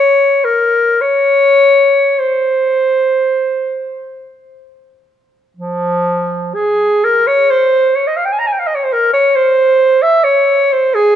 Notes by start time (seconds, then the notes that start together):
Already playing: C#5
0.44 A#4
1.01 C#5
2.19 C5
5.57 F3
6.55 G#4
7.04 A#4
7.27 C#5
7.50 C5
7.95 C#5
8.07 D#5
8.17 F5
8.25 G5
8.32 G#5
8.39 A#5
8.47 G#5
8.53 G5
8.59 F5
8.67 D#5
8.75 C#5
8.84 C5
8.93 A#4
9.13 C#5
9.36 C5
10.02 E5
10.24 C#5
10.73 C5
10.94 G#4